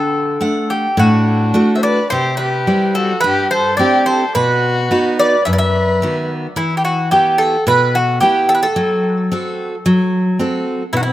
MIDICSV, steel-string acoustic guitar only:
0, 0, Header, 1, 2, 480
1, 0, Start_track
1, 0, Tempo, 561272
1, 1793, Time_signature, 4, 2, 24, 8
1, 5136, Tempo, 544959
1, 9647, End_track
2, 0, Start_track
2, 0, Title_t, "Steel-string acoustic guitar"
2, 0, Program_c, 0, 25
2, 0, Note_on_c, 0, 50, 63
2, 321, Note_off_c, 0, 50, 0
2, 347, Note_on_c, 0, 57, 48
2, 352, Note_on_c, 0, 62, 35
2, 356, Note_on_c, 0, 78, 58
2, 734, Note_off_c, 0, 57, 0
2, 734, Note_off_c, 0, 62, 0
2, 738, Note_off_c, 0, 78, 0
2, 831, Note_on_c, 0, 45, 69
2, 1299, Note_off_c, 0, 45, 0
2, 1317, Note_on_c, 0, 57, 45
2, 1319, Note_on_c, 0, 62, 42
2, 1326, Note_on_c, 0, 66, 52
2, 1700, Note_off_c, 0, 57, 0
2, 1703, Note_off_c, 0, 62, 0
2, 1704, Note_off_c, 0, 66, 0
2, 1814, Note_on_c, 0, 48, 62
2, 2271, Note_off_c, 0, 48, 0
2, 2285, Note_on_c, 0, 55, 59
2, 2288, Note_on_c, 0, 60, 47
2, 2292, Note_on_c, 0, 64, 37
2, 2666, Note_off_c, 0, 60, 0
2, 2666, Note_off_c, 0, 64, 0
2, 2667, Note_off_c, 0, 55, 0
2, 2770, Note_on_c, 0, 43, 68
2, 3228, Note_off_c, 0, 43, 0
2, 3243, Note_on_c, 0, 60, 51
2, 3248, Note_on_c, 0, 64, 35
2, 3252, Note_on_c, 0, 67, 49
2, 3622, Note_off_c, 0, 60, 0
2, 3622, Note_off_c, 0, 64, 0
2, 3627, Note_off_c, 0, 67, 0
2, 3723, Note_on_c, 0, 47, 65
2, 4179, Note_off_c, 0, 47, 0
2, 4197, Note_on_c, 0, 59, 47
2, 4203, Note_on_c, 0, 63, 39
2, 4205, Note_on_c, 0, 66, 55
2, 4574, Note_off_c, 0, 59, 0
2, 4574, Note_off_c, 0, 63, 0
2, 4578, Note_off_c, 0, 66, 0
2, 4674, Note_on_c, 0, 42, 69
2, 5128, Note_off_c, 0, 42, 0
2, 5149, Note_on_c, 0, 51, 45
2, 5160, Note_on_c, 0, 59, 41
2, 5160, Note_on_c, 0, 66, 51
2, 5535, Note_off_c, 0, 51, 0
2, 5536, Note_off_c, 0, 59, 0
2, 5539, Note_off_c, 0, 66, 0
2, 5626, Note_on_c, 0, 52, 60
2, 6094, Note_off_c, 0, 52, 0
2, 6115, Note_on_c, 0, 59, 47
2, 6119, Note_on_c, 0, 64, 43
2, 6125, Note_on_c, 0, 67, 47
2, 6498, Note_off_c, 0, 59, 0
2, 6501, Note_off_c, 0, 64, 0
2, 6502, Note_off_c, 0, 67, 0
2, 6599, Note_on_c, 0, 47, 70
2, 7062, Note_off_c, 0, 47, 0
2, 7082, Note_on_c, 0, 59, 47
2, 7089, Note_on_c, 0, 64, 44
2, 7094, Note_on_c, 0, 67, 51
2, 7462, Note_off_c, 0, 59, 0
2, 7466, Note_off_c, 0, 64, 0
2, 7469, Note_off_c, 0, 67, 0
2, 7562, Note_on_c, 0, 54, 69
2, 8021, Note_off_c, 0, 54, 0
2, 8051, Note_on_c, 0, 60, 52
2, 8058, Note_on_c, 0, 66, 46
2, 8062, Note_on_c, 0, 69, 52
2, 8425, Note_off_c, 0, 60, 0
2, 8429, Note_off_c, 0, 66, 0
2, 8431, Note_off_c, 0, 69, 0
2, 8528, Note_on_c, 0, 54, 71
2, 8980, Note_off_c, 0, 54, 0
2, 9001, Note_on_c, 0, 60, 46
2, 9006, Note_on_c, 0, 66, 43
2, 9013, Note_on_c, 0, 69, 50
2, 9374, Note_off_c, 0, 60, 0
2, 9377, Note_off_c, 0, 66, 0
2, 9381, Note_off_c, 0, 69, 0
2, 9474, Note_on_c, 0, 47, 67
2, 9647, Note_off_c, 0, 47, 0
2, 9647, End_track
0, 0, End_of_file